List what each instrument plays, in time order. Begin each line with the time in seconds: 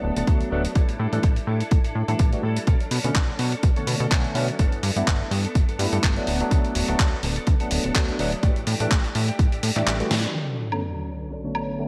Already playing: tine electric piano F#3 A3 B3 D4, clean electric guitar B3 D4 A4
0.04 analog synth bass D1
0.16 analog synth bass D1, clean electric guitar B3 D4 A4, closed hi-hat
0.27 analog synth bass D2, tine electric piano F#3 A3 B3 D4, clean electric guitar F#3 B3 D4 A4, kick, closed hi-hat
0.41 closed hi-hat
0.51 analog synth bass D1, clean electric guitar F#3 B3 D4 A4, tine electric piano F#3 A3 B3 D4
0.65 closed hi-hat
0.75 analog synth bass A1, clean electric guitar G3 D4 E4 A4, kick, closed hi-hat
0.89 analog synth bass A2, closed hi-hat
0.99 analog synth bass A2, clean electric guitar G3 D4 E4 A4
1.12 analog synth bass A2, tine electric piano E3 G3 A3 D4, clean electric guitar D4 E4 A4, closed hi-hat
1.23 analog synth bass A1, clean electric guitar G3 D4 E4 A4, kick, closed hi-hat
1.36 closed hi-hat
1.47 analog synth bass A2, clean electric guitar G3 D4 E4 A4
1.60 clean electric guitar D4 E4 A4, closed hi-hat
1.71 analog synth bass A1, kick, closed hi-hat
1.84 analog synth bass A2, clean electric guitar D4 E4 A4, closed hi-hat
1.95 analog synth bass A2
2.08 analog synth bass A2, tine electric piano E3 G3 A3 D4, clean electric guitar D4 E4 A4, closed hi-hat
2.19 analog synth bass A1, clean electric guitar G3 D4 E4 A4, kick, closed hi-hat
2.32 tine electric piano E3 G3 A3 F#4, closed hi-hat
2.43 analog synth bass A2, clean electric guitar G3 D4 E4 A4
2.57 closed hi-hat
2.67 analog synth bass B1, clean electric guitar F#3 C#4 D4 A4, kick, closed hi-hat
2.80 closed hi-hat
2.91 analog synth bass B2, clean electric guitar F#3 C#4 D4 A4, open hi-hat
3.04 analog synth bass B2, tine electric piano D3 A3 B3 C#4, clean electric guitar C#4 D4 A4, closed hi-hat
3.15 analog synth bass B1, clean electric guitar F#3 C#4 D4 A4, kick, clap, closed hi-hat
3.39 analog synth bass B2, clean electric guitar F#3 C#4 D4 A4, open hi-hat
3.52 clean electric guitar C#4 D4 A4, closed hi-hat
3.63 analog synth bass B1, kick, closed hi-hat
3.76 analog synth bass B2, tine electric piano D3 A3 B3 C#5, clean electric guitar C#4 D4 A4, closed hi-hat
3.87 analog synth bass B2, open hi-hat
4.00 analog synth bass B2, clean electric guitar C#4 D4 A4, closed hi-hat
4.11 analog synth bass B1, tine electric piano D3 A3 B3 C#4, clean electric guitar F#3 C#4 D4 A4, kick, clap, closed hi-hat
4.24 closed hi-hat
4.35 analog synth bass B2, tine electric piano D3 A3 B3 C#4, clean electric guitar F#3 C#4 D4 A4, open hi-hat
4.48 closed hi-hat
4.59 analog synth bass G1, clean electric guitar E3 B3 D4 A4, kick, closed hi-hat
4.72 analog synth bass G2, closed hi-hat
4.83 analog synth bass G2, clean electric guitar E3 B3 D4 A4, open hi-hat
4.96 analog synth bass G2, tine electric piano G3 A3 B3 E4, clean electric guitar B3 D4 A4, closed hi-hat
5.07 analog synth bass G1, clean electric guitar E3 B3 D4 A4, kick, clap, closed hi-hat
5.31 analog synth bass G2, clean electric guitar E3 B3 D4 A4, open hi-hat
5.44 clean electric guitar B3 D4 A4, closed hi-hat
5.55 analog synth bass G1, kick, closed hi-hat
5.68 analog synth bass G2, clean electric guitar B3 D4 A4, closed hi-hat
5.79 analog synth bass G2, tine electric piano G3 A3 B3 E4, open hi-hat
5.92 analog synth bass G2, clean electric guitar B3 D4 A4, closed hi-hat
6.03 analog synth bass G1, clean electric guitar E3 B3 D4 A4, kick, clap, closed hi-hat
6.16 tine electric piano F#3 A3 B3 D4, closed hi-hat
6.26 analog synth bass D1, clean electric guitar F#3 B3 D4 A4, open hi-hat
6.40 tine electric piano F#3 A3 B3 D4, closed hi-hat
6.50 analog synth bass D2, clean electric guitar F#3 B3 D4 A4, kick, closed hi-hat
6.65 closed hi-hat
6.74 analog synth bass D1, clean electric guitar F#3 B3 D4 A4, open hi-hat
6.88 analog synth bass D1, tine electric piano F#3 A3 B3 D4, clean electric guitar B3 D4 A4, closed hi-hat
6.99 analog synth bass D2, clean electric guitar F#3 B3 D4 A4, kick, clap, closed hi-hat
7.23 analog synth bass D1, clean electric guitar F#3 B3 D4 A4, open hi-hat
7.36 clean electric guitar B3 D4 A4, closed hi-hat
7.47 analog synth bass D2, kick, closed hi-hat
7.60 analog synth bass D1, tine electric piano F#3 A3 B3 D4, clean electric guitar B3 D4 A4, closed hi-hat
7.71 analog synth bass D1, open hi-hat
7.84 analog synth bass D1, clean electric guitar B3 D4 A4, closed hi-hat
7.95 analog synth bass D2, clean electric guitar F#3 B3 A4, tine electric piano F#3 A3 B3 D4, kick, clap, closed hi-hat
8.08 closed hi-hat
8.19 analog synth bass D1, clean electric guitar F#3 B3 D4 A4, tine electric piano F#3 A3 B3 D4, open hi-hat
8.32 closed hi-hat
8.43 analog synth bass A1, clean electric guitar E3 A3 D4 G4, kick, closed hi-hat
8.56 analog synth bass A2, closed hi-hat
8.67 analog synth bass A2, clean electric guitar E3 A3 D4 G4, open hi-hat
8.80 analog synth bass A2, tine electric piano E3 G3 A3 D4, clean electric guitar A3 D4 G4, closed hi-hat
8.91 analog synth bass A1, clean electric guitar E3 A3 D4 G4, kick, clap, closed hi-hat
9.04 closed hi-hat
9.15 analog synth bass A2, clean electric guitar E3 A3 D4 G4, open hi-hat
9.28 clean electric guitar A3 D4 G4, closed hi-hat
9.39 analog synth bass A1, kick, closed hi-hat
9.52 analog synth bass A2, clean electric guitar A3 D4 G4, closed hi-hat
9.63 analog synth bass A2, open hi-hat
9.76 analog synth bass A2, tine electric piano E3 G3 A3 D4, clean electric guitar A3 D4 G4, clap, closed hi-hat
9.87 analog synth bass A1, clean electric guitar E3 A3 D4 G4, clap, closed hi-hat
10.00 tine electric piano E3 G3 A3 F#4, closed hi-hat
10.11 analog synth bass A2, clean electric guitar E3 A3 D4 G4, snare, open hi-hat
10.24 closed hi-hat
10.34 string machine D3 B4 C#5 A5, clean electric guitar F#3 C#4 D4, sub drop
10.72 tine electric piano D3 A3 B3 C#4, high woodblock
11.30 clean electric guitar F#3 C#4 D4 A4
11.44 tine electric piano D3 A3 B3 C#5
11.55 high woodblock
11.79 tine electric piano D3 A3 B3 C#4, clean electric guitar F#3 C#4 D4 A4